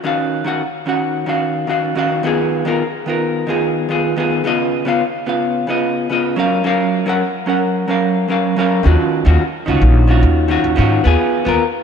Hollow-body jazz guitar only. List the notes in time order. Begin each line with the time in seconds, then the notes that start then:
0.04 D#3 C#4 F#4 F5
0.44 D#3 C#4 F#4 F#5
0.86 D#3 C#4 F#4 F#5
1.26 D#3 C#4 F#4 F5
1.67 D#3 C#4 F#4 F5
1.95 D#3 C#4 F#4 F5
2.23 D#3 B3 F4 G#4
2.65 D#3 B3 F4 A#4
3.06 D#3 B3 F4 A#4
3.47 D#3 B3 F4 G#4
3.89 D#3 B3 F4 G#4
4.16 D#3 B3 F4 G#4
4.44 C#3 B3 F4 D#5
4.85 C#3 B3 F4 F5
5.26 C#3 B3 F4 F5
5.67 C#3 B3 F4 D#5
6.10 C#3 B3 F4 D#5
6.36 F#3 C#4 A#4 F5
6.64 F#3 C#4 A#4 F5
7.06 F#3 C#4 A#4 F#5
7.46 F#3 C#4 A#4 F#5
7.88 F#3 C#4 A#4 F5
8.28 F#3 C#4 A#4 F5
8.56 F#3 C#4 A#4 F5
8.83 D#3 C#4 F4 F#4
9.25 D#3 C#4 F4 F#4
9.66 D#3 C#4 F4 F#4
10.07 D#3 C#4 F4 F#4
10.48 D#3 C#4 F4 F#4
10.76 D#3 C#4 F4 F#4
11.04 B3 F4 G#4
11.45 B3 F4 A#4